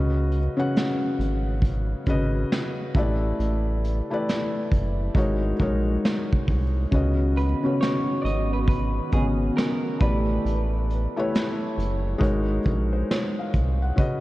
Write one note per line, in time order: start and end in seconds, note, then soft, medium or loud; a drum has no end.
0.00 0.49 C#2 loud
0.00 0.37 C#3 medium
0.00 0.37 C#4 medium
0.00 0.37 F#4 medium
0.00 0.38 B4 medium
0.00 0.38 D#5 medium
0.32 closed hi-hat medium
0.57 1.68 C#3 medium
0.57 1.68 C#4 medium
0.57 1.69 F#4 medium
0.57 1.69 B4 medium
0.57 1.69 F#5 loud
0.76 snare loud
0.76 closed hi-hat medium
1.19 1.95 G#1 medium
1.19 closed hi-hat medium
1.62 kick medium
1.62 closed hi-hat medium
2.06 2.45 G#1 medium
2.06 2.95 C#3 medium
2.06 2.95 C#4 medium
2.06 2.96 F#4 medium
2.06 2.96 B4 medium
2.06 2.96 D#5 loud
2.06 kick medium
2.06 closed hi-hat medium
2.52 snare loud
2.52 closed hi-hat medium
2.94 3.33 A1 loud
2.94 3.83 A3 medium
2.94 3.84 E4 medium
2.94 3.84 G4 medium
2.94 3.85 B4 medium
2.94 kick loud
2.94 closed hi-hat medium
2.99 3.85 D5 medium
3.39 4.02 A1 loud
3.39 closed hi-hat medium
3.84 closed hi-hat medium
4.10 5.15 A3 medium
4.10 5.15 E4 medium
4.10 5.16 G4 medium
4.10 5.16 B4 medium
4.10 5.17 D5 medium
4.29 snare loud
4.29 closed hi-hat medium
4.72 5.10 F#1 medium
4.72 kick medium
4.72 closed hi-hat medium
5.14 5.53 G#1 loud
5.14 5.53 G#3 medium
5.14 5.53 D#4 medium
5.14 5.54 F#4 medium
5.14 5.54 A#4 medium
5.14 5.54 C#5 medium
5.14 kick medium
5.14 closed hi-hat medium
5.59 5.98 A#1 loud
5.59 6.61 G#3 medium
5.59 6.61 D#4 medium
5.59 6.62 F#4 medium
5.59 6.62 A#4 medium
5.59 6.62 C#5 medium
5.59 kick medium
5.59 closed hi-hat soft
6.05 snare loud
6.05 closed hi-hat medium
6.33 kick medium
6.47 6.86 C2 medium
6.47 kick medium
6.47 open hi-hat soft
6.91 7.55 C#2 loud
6.91 7.42 C#3 medium
6.91 9.98 D#3 medium
6.91 10.41 B3 medium
6.91 7.43 C#4 medium
6.91 9.98 C#4 medium
6.91 9.98 F#4 medium
6.91 7.43 F#4 medium
6.91 7.44 B4 medium
6.91 7.44 D#5 medium
6.91 kick medium
6.91 closed hi-hat medium
7.37 7.80 B4 medium
7.37 closed hi-hat medium
7.63 8.74 C#3 medium
7.63 8.74 C#4 medium
7.63 8.75 F#4 medium
7.63 8.75 B4 medium
7.63 8.75 C#5 medium
7.81 8.21 C#5 loud
7.81 snare loud
7.81 closed hi-hat medium
8.22 9.00 G#1 medium
8.22 8.25 D5 medium
8.22 8.53 D#5 loud
8.26 closed hi-hat medium
8.53 8.58 B4 loud
8.68 9.13 B4 medium
8.68 kick medium
8.68 closed hi-hat medium
9.12 9.51 G#1 medium
9.12 10.00 C#3 medium
9.12 10.02 B3 medium
9.12 10.01 C#4 medium
9.12 10.01 F#4 medium
9.12 9.25 G#4 medium
9.12 10.02 D#5 medium
9.12 kick medium
9.12 closed hi-hat medium
9.57 10.01 A#4 loud
9.57 snare loud
9.57 closed hi-hat medium
9.99 10.39 A1 loud
9.99 10.44 D3 medium
9.99 10.88 A3 medium
9.99 10.44 A3 medium
9.99 10.88 E4 medium
9.99 10.89 G4 medium
9.99 10.44 G4 medium
9.99 10.89 B4 medium
9.99 11.73 B4 medium
9.99 10.90 D5 medium
9.99 kick loud
9.99 closed hi-hat medium
10.45 11.07 A1 loud
10.45 closed hi-hat medium
10.90 closed hi-hat medium
11.16 12.21 A3 medium
11.16 12.21 E4 medium
11.16 12.22 G4 medium
11.16 12.22 B4 medium
11.16 12.20 C#5 loud
11.35 snare loud
11.35 closed hi-hat medium
11.78 12.15 F#1 medium
11.78 closed hi-hat medium
12.18 12.59 G#1 loud
12.18 12.58 G#3 loud
12.18 12.58 D#4 medium
12.18 12.58 F#4 medium
12.18 12.59 A#4 medium
12.18 12.59 C#5 loud
12.18 kick medium
12.23 closed hi-hat medium
12.65 13.04 A#1 loud
12.65 12.92 A#4 medium
12.65 kick medium
12.65 closed hi-hat medium
12.93 13.08 C5 medium
13.11 13.37 C#5 medium
13.11 snare loud
13.11 closed hi-hat medium
13.39 13.80 F5 medium
13.53 13.92 C2 medium
13.53 kick medium
13.53 closed hi-hat medium
13.82 14.20 F#5 medium
13.96 14.20 C#3 medium
13.96 14.20 C#4 medium
13.96 14.20 F#4 medium
13.96 14.20 B4 medium
13.96 14.20 D#5 medium
13.96 kick medium
13.96 closed hi-hat medium